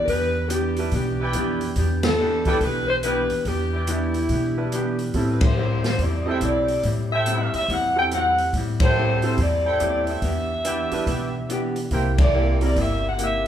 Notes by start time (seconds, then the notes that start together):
0.06 E2 E3 B3 D4 B4, kick, open hi-hat
0.10 G4
0.48 E3 B3 D4 G4, closed hi-hat
0.77 G3 D4 E4 B4, open hi-hat
0.92 B1 E3 B3 D4, kick, open hi-hat
0.96 G4
1.20 E4 B4 D5 G5
1.33 F2 E3 B3 D4 G4, closed hi-hat
1.61 open hi-hat
1.76 E2 E3 B3 D4 G4, kick, open hi-hat
2.03 A4, snare, ride
2.19 E3 B3 D4 G4
2.45 G3 D4 E4 A4 B4 D5 G5, kick, open hi-hat
2.61 B1 E3 B3 D4 G4 B4, kick, open hi-hat
2.88 C5
3.03 E3 B3 D4 E4 G4 B4 D5 G5, closed hi-hat
3.30 muted upright bass stroke, open hi-hat
3.45 E2 E3 B3 D4 G4, kick, open hi-hat
3.49 G4
3.73 E4 B4 D5 G5
3.87 E3 B3 D4 E4 G4, closed hi-hat
4.14 open hi-hat
4.29 B2 E3 B3, kick, open hi-hat
4.33 D4 G4
4.58 G3 D4 E4 B4
4.72 E3 B3 D4 G4, closed hi-hat
4.99 open hi-hat
5.14 A2 G3 C4 E4 A4, kick, open hi-hat
5.29 B4
5.41 C5, kick, ride
5.57 A2 G3 C4 E4
5.84 C5, snare, open hi-hat
5.98 E2 A2 G3 C4 E4 D5, kick, open hi-hat
6.23 G3 C4 D#5
6.27 E4 A4 C5 E5 G5
6.40 B1 A2 G3 C4 E4, closed hi-hat
6.45 D5
6.68 open hi-hat
6.82 A2 G3 C4 E4, kick, open hi-hat
7.12 E4 A4 C5 E5 G5
7.26 A2 G3 C4 E4, closed hi-hat
7.54 E5, muted upright bass stroke, open hi-hat
7.68 E2 A2 G3 C4 E4 F#5, kick, open hi-hat
7.96 G3 C4 E4 A4 G5
8.11 A2 G3 C4 E4 F#5, closed hi-hat
8.38 open hi-hat
8.53 A2 G3 C4, kick, open hi-hat
8.57 E4
8.80 E4 A4 C5 G5, kick, ride
8.96 A2 G3 C4 E4
9.22 G3 C4 E4 A4 C5, open hi-hat
9.37 E2 A2 G3 C4 E4, kick, open hi-hat
9.43 D5
9.65 E4 A4 C5 G5
9.79 D#2 A2 G3 C4 E4, closed hi-hat
10.07 E5, open hi-hat
10.22 E2 E3 B3 D4 G4, kick, open hi-hat
10.64 E3 B3 D4 E4 G4 B4 D5 G5, closed hi-hat
10.91 G3 D4 E4 B4, muted upright bass stroke, open hi-hat
11.07 B2 E3 B3 D4 G4, kick, open hi-hat
11.49 E3 B3 D4 G4, closed hi-hat
11.76 open hi-hat
11.91 C2 C3 A#3 E4 G4 A#4 C5 G5, kick, open hi-hat
12.18 kick, ride
12.22 D5
12.33 C3 A#3 E4 G4
12.61 G3 C4 E4 A#4, open hi-hat
12.66 D5
12.76 G1 C3 A#3 E4 G4 E5, kick, open hi-hat
13.09 F#5
13.18 C3 A#3 E4 G4, closed hi-hat
13.24 E5